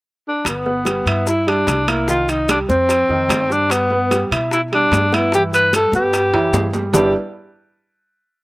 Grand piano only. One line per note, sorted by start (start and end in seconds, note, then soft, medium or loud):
0.66 0.83 B3 medium
0.66 0.83 B4 medium
0.86 1.02 G3 medium
0.86 1.03 G4 medium
1.08 1.40 E4 medium
1.08 1.41 E5 medium
1.47 1.80 G3 medium
1.47 1.81 G4 medium
1.88 2.04 A#3 medium
1.88 2.05 A#4 medium
2.08 2.41 D#3 medium
2.08 2.41 D#4 medium
2.49 2.65 G3 medium
2.49 2.66 G4 medium
2.69 3.02 C4 medium
2.69 3.02 C5 medium
3.10 3.43 D#3 medium
3.10 3.43 D#4 medium
3.50 3.83 G3 medium
3.50 3.83 G4 medium
3.92 4.08 B3 medium
3.92 4.08 B4 medium
4.11 4.28 G3 medium
4.11 4.28 G4 medium
4.32 4.65 E4 medium
4.32 4.65 E5 medium
4.72 5.05 G3 medium
4.72 5.05 G4 medium
5.12 5.29 B3 medium
5.12 5.29 B4 medium
5.34 5.67 E3 medium
5.34 5.66 E4 medium
5.74 5.90 G3 medium
5.74 5.90 G4 medium
5.95 6.27 B3 medium
5.95 6.27 B4 medium
6.34 6.67 E3 medium
6.34 6.67 E4 medium
6.75 6.91 G3 medium
6.75 6.91 G4 medium
6.93 7.12 G3 medium
6.93 7.13 D4 medium
6.93 7.13 E4 medium
6.93 7.13 G4 medium
6.93 7.13 B4 medium
6.93 7.13 D5 medium